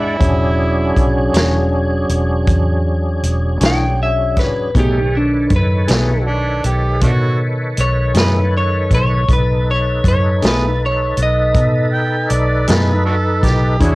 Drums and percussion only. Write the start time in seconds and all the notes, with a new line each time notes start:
0.21 kick, closed hi-hat
0.96 kick, closed hi-hat
1.34 snare, closed hi-hat
2.10 closed hi-hat
2.47 kick, closed hi-hat
3.23 closed hi-hat
3.61 snare, closed hi-hat
4.36 kick, snare, closed hi-hat
4.75 kick, closed hi-hat
5.50 kick, closed hi-hat
5.88 snare, closed hi-hat
6.64 closed hi-hat
7.01 kick, closed hi-hat
7.77 closed hi-hat
8.15 snare, closed hi-hat
8.91 kick, closed hi-hat
9.28 kick, closed hi-hat
10.04 kick, closed hi-hat
10.42 snare, closed hi-hat
11.17 closed hi-hat
11.55 kick, closed hi-hat
12.30 closed hi-hat
12.68 snare, closed hi-hat
13.43 kick, snare, closed hi-hat
13.81 kick, closed hi-hat